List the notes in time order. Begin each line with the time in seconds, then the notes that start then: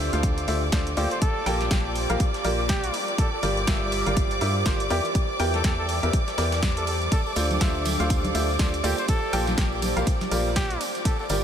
Already playing: D2 F4 G4 C5 D5 D6, sub drop
0.13 D2 D3 F4 A4 C5 F5, closed hi-hat
0.23 kick, closed hi-hat
0.38 closed hi-hat
0.48 D2 D3 F4 A4 C5 E5, open hi-hat
0.72 D2 D3 F4 A4 C5 D5, kick, snare, closed hi-hat
0.87 closed hi-hat
0.97 D2 A#3 F4 G4 A4 C5 D5, closed hi-hat, open hi-hat
1.11 C5, closed hi-hat
1.21 A4, kick, closed hi-hat
1.46 A#1 A#3 F4 G4 A#4 G5, closed hi-hat, open hi-hat
1.61 snare, closed hi-hat
1.71 A#1 A#3 F4 G4 A#4 G5, kick, snare, closed hi-hat
1.95 closed hi-hat, open hi-hat
2.10 A#1 A#3 F4 G4 A#4 F5, closed hi-hat
2.20 kick, closed hi-hat
2.34 snare, closed hi-hat
2.44 A#1 A#3 F4 G4 A#4 D5, closed hi-hat, open hi-hat
2.69 G4, kick, snare, closed hi-hat
2.84 closed hi-hat
2.94 closed hi-hat, open hi-hat
3.08 closed hi-hat
3.18 A4, kick, closed hi-hat
3.33 A4
3.43 G1 G3 F4 G4 A#4 D5, snare, closed hi-hat, open hi-hat
3.57 closed hi-hat
3.67 G1 G3 F4 G4 A#4 E5, kick, snare, closed hi-hat
3.92 closed hi-hat, open hi-hat
4.06 G1 G3 F4 G4 A#4 F5, closed hi-hat
4.17 kick, closed hi-hat
4.31 closed hi-hat
4.41 G2 G3 F4 G4 A#4 E5, open hi-hat
4.66 G1 F4 G4 A#4 C5, kick, snare, closed hi-hat
4.80 closed hi-hat
4.90 E2 E3 E4 G4 A#4 D5, closed hi-hat, open hi-hat
5.05 closed hi-hat
5.09 E5
5.15 kick, closed hi-hat
5.40 E2 E3 E4 G4 A#4 G5, closed hi-hat, open hi-hat
5.54 A4, snare, closed hi-hat
5.64 E2 E3 E4 G4 A4 A#4 G5, kick, snare, closed hi-hat
5.79 A4
5.89 A4, closed hi-hat, open hi-hat
6.03 E2 E3 E4 G4 A#4 E5, closed hi-hat
6.13 kick, closed hi-hat
6.28 snare, closed hi-hat
6.38 E2 E3 E4 G4 A#4 D5, snare, closed hi-hat, open hi-hat
6.52 snare, closed hi-hat
6.63 kick, snare, closed hi-hat
6.77 A4, closed hi-hat
6.87 A4, closed hi-hat, open hi-hat
7.02 closed hi-hat
7.12 A4, kick, closed hi-hat, ride, tambourine
7.26 A4, tambourine
7.36 D2 D3 F4 A4 C5 D5, snare, closed hi-hat, open hi-hat, ride, tambourine
7.51 closed hi-hat, tambourine, high conga
7.61 D2 D3 F4 A4 C5 E5, kick, snare, closed hi-hat, ride, tambourine
7.75 tambourine
7.85 closed hi-hat, open hi-hat, ride, tambourine, high conga
7.94 F4
8.00 D2 D3 F4 A4 C5 F5, closed hi-hat, tambourine
8.10 kick, closed hi-hat, ride, tambourine
8.24 closed hi-hat, tambourine, high conga
8.35 D2 D3 F4 A4 C5 E5, open hi-hat, ride, tambourine
8.49 tambourine
8.59 D2 D3 F4 A4 C5 D5, kick, snare, closed hi-hat, ride, tambourine
8.74 closed hi-hat, tambourine
8.84 D2 A#3 F4 G4 A4 C5 D5, closed hi-hat, open hi-hat, ride, tambourine
8.98 C5, closed hi-hat, tambourine
9.08 A4, kick, closed hi-hat, ride, tambourine
9.22 tambourine
9.33 A#1 A#3 F4 G4 A#4 G5, closed hi-hat, open hi-hat, ride, tambourine
9.47 snare, closed hi-hat, tambourine, high conga
9.58 A#1 A#3 F4 G4 A#4 G5, kick, snare, closed hi-hat, ride, tambourine
9.72 tambourine
9.82 closed hi-hat, open hi-hat, ride, tambourine, high conga
9.97 A#1 A#3 F4 G4 A#4 F5, closed hi-hat, tambourine
10.07 kick, closed hi-hat, ride, tambourine
10.21 snare, closed hi-hat, tambourine, high conga
10.31 A#1 A#3 F4 G4 A#4 D5, closed hi-hat, open hi-hat, ride, tambourine
10.46 tambourine
10.56 G4, kick, snare, closed hi-hat, ride
10.70 closed hi-hat, tambourine
10.81 closed hi-hat, open hi-hat, ride, tambourine
10.95 closed hi-hat, tambourine
11.05 A4, kick, closed hi-hat, ride, tambourine
11.19 A4, tambourine
11.29 G1 G3 F4 G4 A#4 D5, snare, closed hi-hat, open hi-hat, ride, tambourine